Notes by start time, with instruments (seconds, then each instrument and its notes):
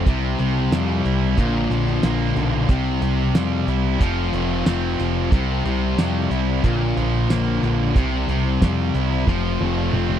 0.05 picked electric bass C2, distorted electric guitar C3 G3 C4 E4, kick, closed hi-hat
0.39 picked electric bass C2, distorted electric guitar C3, closed hi-hat
0.72 picked electric bass F2, distorted electric guitar G3, snare, closed hi-hat, tambourine
1.05 picked electric bass C2, distorted electric guitar E4, closed hi-hat
1.36 picked electric bass A#1, distorted electric guitar A#2 D3 F3 A#3 F4, kick, closed hi-hat
1.70 picked electric bass A#1, distorted electric guitar F3, closed hi-hat
1.87 snare
2.03 picked electric bass A#1, distorted electric guitar A#3, snare, closed hi-hat, tambourine
2.35 picked electric bass B1, distorted electric guitar D3, closed hi-hat
2.68 picked electric bass C2, distorted electric guitar C3 G3 C4 E4, kick, closed hi-hat
3.01 picked electric bass C2, distorted electric guitar C3, closed hi-hat
3.34 picked electric bass F2, distorted electric guitar G3, snare, closed hi-hat, tambourine
3.67 picked electric bass C2, distorted electric guitar E4, closed hi-hat
3.99 picked electric bass F1, distorted electric guitar F3 A3 C4 F4, kick, closed hi-hat
4.33 picked electric bass F1, distorted electric guitar A3, closed hi-hat
4.66 picked electric bass F1, distorted electric guitar C4, snare, closed hi-hat, tambourine
4.99 picked electric bass F1, distorted electric guitar F3, closed hi-hat
5.31 picked electric bass C2, distorted electric guitar C3 G3 C4 E4, kick, closed hi-hat
5.65 picked electric bass C2, distorted electric guitar C3, closed hi-hat
5.97 picked electric bass F2, distorted electric guitar G3, snare, closed hi-hat, tambourine
6.30 picked electric bass C2, distorted electric guitar E4, closed hi-hat
6.62 picked electric bass A#1, distorted electric guitar A#2 D3 F3 A#3, kick, closed hi-hat
6.66 distorted electric guitar F4
6.97 picked electric bass A#1, distorted electric guitar F3, closed hi-hat
7.30 picked electric bass A#1, distorted electric guitar A#3, snare, closed hi-hat, tambourine
7.62 picked electric bass A#1, distorted electric guitar D3, closed hi-hat
7.95 picked electric bass C2, distorted electric guitar C3 G3 C4 E4, kick, closed hi-hat
8.28 picked electric bass C2, distorted electric guitar C3, closed hi-hat
8.62 picked electric bass F2, distorted electric guitar G3, kick, snare, closed hi-hat, tambourine
8.95 picked electric bass C2, distorted electric guitar E4, closed hi-hat
9.11 snare
9.26 picked electric bass F1, distorted electric guitar F3 A3 C4 F4, kick, snare
9.61 picked electric bass F1, distorted electric guitar A3, high tom
9.93 picked electric bass F1, distorted electric guitar C4, mid tom
10.10 mid tom